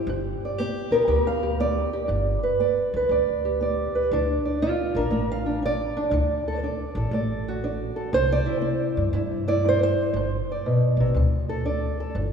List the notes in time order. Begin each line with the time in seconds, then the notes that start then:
Already playing: G4
0.07 G1 G2
0.45 D5
0.58 B3 G4
0.91 D2 B3 A#4
1.08 D2 G2 G4
1.27 F5
1.43 G4
1.60 B3 D5
1.93 G4
2.08 G1 G2
2.43 B4
2.60 B3 D5
2.94 D2 B4
3.09 D2 G2 D5
3.45 G4
3.60 B3 D5
3.95 B4
4.11 D2 D3 D4 D5
4.45 D5
4.62 D4 F4
4.95 A1 D4 A#4
5.10 A1 A3 D4
5.32 F5
5.46 D4
5.62 D4 D5
5.97 D4
6.11 D2 D3
6.48 A4
6.63 D4 D5
6.95 A1 A4
7.11 A1 A3 D5
7.48 F#4
7.64 D4 D5
7.96 A4
8.13 C2 C3 C5
8.32 D5
8.46 E4
8.61 C4
8.97 G2
9.13 G2 E4
9.48 E4 D5
9.65 C4 C5
9.83 C5
10.13 G1 G2
10.52 D5
10.66 B2
10.97 A1 C3
11.14 D2 D3
11.49 A4
11.65 D4 D5
12.00 A4
12.15 G1 G2